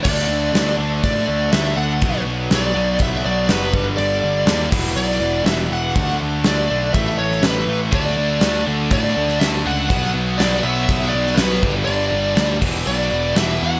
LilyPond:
<<
  \new Staff \with { instrumentName = "Lead electric guitar" } { \time 4/4 \key d \major \tempo 4 = 122 d''4. r8 d''4 e''8 fis''8~ | fis''8 r8 d''4 e''8 d''8 b'8. r16 | d''4. r8 d''4 e''8 fis''8~ | fis''8 r8 d''4 e''8 cis''8 b'8. r16 |
d''4. r8 d''4 e''8 fis''8~ | fis''8 r8 d''8 e''4 d''8 b'8. r16 | d''4. r8 d''4 e''8 fis''8 | }
  \new Staff \with { instrumentName = "Tonewheel organ" } { \time 4/4 \key d \major <d' a' e''>1 | <b fis' d''>2.~ <b fis' d''>8 <g d' a'>8~ | <g d' a'>4. <e b fis'>2~ <e b fis'>8 | <d' a' e''>2 <a e' b'>2 |
<d' a' e''>1 | <b fis' cis''>2.~ <b fis' cis''>8 <g d' a'>8~ | <g d' a'>4. <e b fis'>2~ <e b fis'>8 | }
  \new Staff \with { instrumentName = "Distorted electric guitar" } { \clef bass \time 4/4 \key d \major <d a d'>4. <d a d'>2~ <d a d'>8 | <b, fis b>4. <b, fis b>2 <g, d g>8~ | <g, d g>4 <g, d g>8 <e, b, e>4. <e, b, e>4 | <d a d'>4. <d a d'>8 <a, e a>4. <a, e a>8 |
<d a d'>4. <d a d'>2~ <d a d'>8 | <b, fis b>4. <b, fis b>2 <g, d g>8~ | <g, d g>4 <g, d g>8 <e, b, e>4. <e, b, e>4 | }
  \new Staff \with { instrumentName = "Distorted electric guitar" } { \clef bass \time 4/4 \key d \major r1 | r1 | r1 | r1 |
<d a d'>2.~ <d a d'>8 <d a d'>8 | <b, fis b>2.~ <b, fis b>8 <g, d g>8~ | <g, d g>4. <e, b, e>2~ <e, b, e>8 | }
  \new Staff \with { instrumentName = "Picked electric bass" } { \clef bass \time 4/4 \key d \major d,8 d,8 d,8 d,8 a,8 d,8 d,8 d,8 | b,,8 b,,8 b,,8 b,,8 b,,8 b,,8 fis,,8 g,,8 | g,,8 g,,8 dis,8 e,,8 b,,8 e,,8 e,,8 e,,8 | d,8 d,8 d,8 b,,8 a,,8 a,,8 a,,8 a,,8 |
d,8 d,8 d,8 d,8 a,8 d,8 d,8 cis,8 | b,,8 b,,8 b,,8 b,,8 b,,8 b,,8 b,,8 g,,8 | g,,8 g,,8 d,8 e,,8 b,,8 e,,8 e,,8 e,8 | }
  \new DrumStaff \with { instrumentName = "Drums" } \drummode { \time 4/4 <cymc bd>4 <cymc sn>4 <cymc bd>4 <cymc sn>4 | <cymc bd>4 <cymc sn>4 <cymc bd>4 <cymc sn>8 bd8 | cymc4 <cymc sn>8 <cymc bd>8 cymc4 <cymc sn>4 | <cymc bd>4 <cymc sn>4 <cymc bd>8. sn16 <cymc sn>4 |
<cymc bd>4 <cymc sn>4 <cymc bd>8. sn16 <cymc sn>4 | <cymc bd>4 <cymc sn>4 <cymc bd>8. sn16 <cymc sn>8 bd8 | cymc4 <cymc sn>8 <cymc bd>8 cymc4 <cymc sn>4 | }
>>